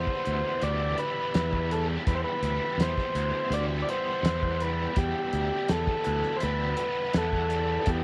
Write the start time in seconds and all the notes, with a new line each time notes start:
Already playing: E2 E3 G3 B3 C5 E5 B5
0.07 kick
0.24 D2 E3, closed hi-hat
0.62 D2 G3 D5, closed hi-hat
0.98 B3 B4, closed hi-hat
1.34 E2 E3, snare, closed hi-hat
1.53 kick
1.71 G3 A4, closed hi-hat
2.07 E2 B4, kick, closed hi-hat
2.15 C5
2.24 B4
2.42 D2 G3, closed hi-hat
2.78 E2 B3, snare, closed hi-hat
2.82 C5
2.97 kick, snare
3.15 D2 E3, closed hi-hat
3.50 D2 G3 D5, closed hi-hat
3.82 D5
3.89 B3 C5, closed hi-hat
4.23 E2 E3, snare, closed hi-hat
4.43 kick
4.60 G3 B4, closed hi-hat
4.96 E2 G4, kick, closed hi-hat
5.33 D2 G3, closed hi-hat
5.68 E2 B3 A4, snare, closed hi-hat
5.87 kick
6.04 D2 E3, closed hi-hat
6.23 snare
6.37 C5, closed hi-hat
6.41 D2 G3 B4
6.77 B3, closed hi-hat
7.13 E2 E3, snare, closed hi-hat
7.18 A4
7.33 kick
7.50 G3, closed hi-hat
7.86 E2 G4, kick, closed hi-hat